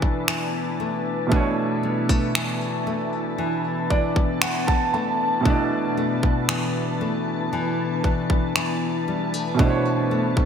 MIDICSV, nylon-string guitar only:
0, 0, Header, 1, 2, 480
1, 0, Start_track
1, 0, Key_signature, 2, "minor"
1, 0, Tempo, 1034483
1, 612, Time_signature, 4, 2, 24, 8
1, 4850, End_track
2, 0, Start_track
2, 0, Title_t, "Nylon-string guitar"
2, 0, Program_c, 0, 24
2, 0, Note_on_c, 0, 47, 77
2, 0, Note_on_c, 0, 52, 68
2, 0, Note_on_c, 0, 57, 59
2, 0, Note_on_c, 0, 62, 65
2, 128, Note_off_c, 0, 52, 0
2, 130, Note_on_c, 0, 52, 58
2, 369, Note_off_c, 0, 57, 0
2, 371, Note_on_c, 0, 57, 56
2, 605, Note_off_c, 0, 47, 0
2, 611, Note_on_c, 0, 47, 77
2, 849, Note_off_c, 0, 57, 0
2, 850, Note_on_c, 0, 55, 53
2, 971, Note_off_c, 0, 55, 0
2, 971, Note_on_c, 0, 57, 44
2, 1089, Note_off_c, 0, 52, 0
2, 1091, Note_on_c, 0, 52, 56
2, 1325, Note_off_c, 0, 57, 0
2, 1331, Note_on_c, 0, 57, 59
2, 1568, Note_off_c, 0, 52, 0
2, 1570, Note_on_c, 0, 52, 67
2, 1805, Note_off_c, 0, 62, 0
2, 1811, Note_on_c, 0, 62, 69
2, 2049, Note_off_c, 0, 52, 0
2, 2051, Note_on_c, 0, 52, 57
2, 2289, Note_off_c, 0, 57, 0
2, 2291, Note_on_c, 0, 57, 59
2, 2526, Note_off_c, 0, 47, 0
2, 2531, Note_on_c, 0, 47, 84
2, 2770, Note_off_c, 0, 57, 0
2, 2772, Note_on_c, 0, 57, 56
2, 3009, Note_off_c, 0, 52, 0
2, 3011, Note_on_c, 0, 52, 55
2, 3251, Note_off_c, 0, 57, 0
2, 3252, Note_on_c, 0, 57, 59
2, 3490, Note_off_c, 0, 52, 0
2, 3492, Note_on_c, 0, 52, 66
2, 3727, Note_off_c, 0, 62, 0
2, 3733, Note_on_c, 0, 62, 66
2, 3970, Note_off_c, 0, 52, 0
2, 3972, Note_on_c, 0, 52, 57
2, 4210, Note_off_c, 0, 57, 0
2, 4212, Note_on_c, 0, 55, 54
2, 4332, Note_off_c, 0, 55, 0
2, 4332, Note_on_c, 0, 57, 50
2, 4447, Note_off_c, 0, 47, 0
2, 4452, Note_on_c, 0, 47, 83
2, 4686, Note_off_c, 0, 57, 0
2, 4692, Note_on_c, 0, 57, 57
2, 4850, Note_off_c, 0, 47, 0
2, 4850, Note_off_c, 0, 52, 0
2, 4850, Note_off_c, 0, 57, 0
2, 4850, Note_off_c, 0, 62, 0
2, 4850, End_track
0, 0, End_of_file